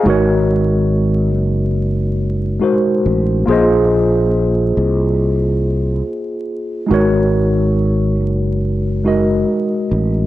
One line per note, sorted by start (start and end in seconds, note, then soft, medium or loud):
0.00 2.57 G#3 medium
0.00 0.28 D#5 medium
0.05 1.34 G#1 loud
0.05 2.58 D#4 medium
0.05 2.59 F#4 medium
0.05 2.59 A#4 medium
0.10 2.60 C#5 medium
1.34 2.58 F#1 medium
2.60 3.46 G#3 medium
2.60 3.47 D#4 medium
2.60 3.47 F#4 medium
2.60 3.48 A#4 soft
2.60 3.48 C5 medium
3.06 3.46 A1 medium
3.46 4.72 A#1 loud
3.46 6.85 A#3 medium
3.46 6.86 F4 medium
3.46 6.87 G#4 medium
3.51 6.88 C5 medium
3.51 6.89 D#5 medium
4.77 6.01 C2 medium
6.86 8.99 G#3 medium
6.86 8.99 D#4 medium
6.90 8.20 G#1 loud
6.90 9.01 F#4 medium
6.90 9.01 A#4 medium
6.90 9.02 C#5 medium
8.20 9.44 F#1 medium
9.04 10.27 G#3 medium
9.04 10.27 D#4 soft
9.04 10.27 F#4 soft
9.04 10.27 A#4 medium
9.04 10.27 D#5 medium
9.91 10.27 A1 medium